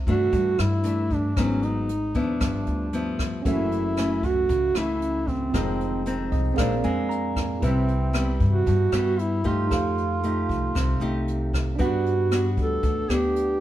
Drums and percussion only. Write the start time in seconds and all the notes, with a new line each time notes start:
0.07 kick, closed hi-hat
0.33 kick, closed hi-hat
0.59 cross-stick, closed hi-hat
0.85 closed hi-hat
1.10 kick, closed hi-hat
1.37 kick, cross-stick, closed hi-hat
1.62 closed hi-hat
1.89 closed hi-hat
2.14 kick, closed hi-hat
2.41 kick, cross-stick, closed hi-hat
2.66 closed hi-hat
2.93 closed hi-hat
3.19 kick, cross-stick, closed hi-hat
3.45 kick, closed hi-hat
3.72 closed hi-hat
3.97 cross-stick, closed hi-hat
4.23 kick, closed hi-hat
4.49 kick, closed hi-hat
4.75 cross-stick, closed hi-hat
5.02 closed hi-hat
5.28 kick, closed hi-hat
5.54 kick, cross-stick, closed hi-hat
5.81 closed hi-hat
6.06 closed hi-hat
6.32 kick, closed hi-hat
6.58 kick, cross-stick, closed hi-hat
6.85 closed hi-hat
7.11 closed hi-hat
7.36 kick, cross-stick, closed hi-hat
7.62 kick, closed hi-hat
7.88 closed hi-hat
8.14 cross-stick, closed hi-hat
8.40 kick, closed hi-hat
8.67 kick, closed hi-hat
8.92 cross-stick, closed hi-hat
9.19 closed hi-hat
9.45 kick, closed hi-hat
9.71 kick, cross-stick, closed hi-hat
9.98 closed hi-hat
10.24 closed hi-hat
10.49 kick, closed hi-hat
10.75 kick, cross-stick, closed hi-hat
11.02 closed hi-hat
11.28 closed hi-hat
11.53 kick, cross-stick, closed hi-hat
11.79 kick, closed hi-hat
12.06 closed hi-hat
12.32 cross-stick, closed hi-hat
12.57 kick, closed hi-hat
12.83 kick, closed hi-hat
13.10 cross-stick, closed hi-hat
13.36 closed hi-hat